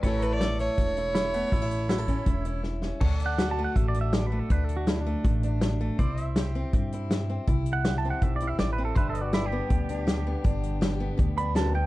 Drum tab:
CC |--------|--------|x-------|--------|
HH |xxxxxxxx|xxxxxx--|-xx-xxx-|xxx-xxx-|
SD |--o---o-|--o---oo|--o---o-|--o---o-|
BD |o---o---|o--oo---|o---o---|o---o---|

CC |--------|--------|--------|--------|
HH |xxx-xxx-|xxx-xxx-|xxx-xxx-|xxx-xxx-|
SD |--o---o-|--o---o-|--o---o-|--o---o-|
BD |o---o---|o---o---|o---o---|o---o---|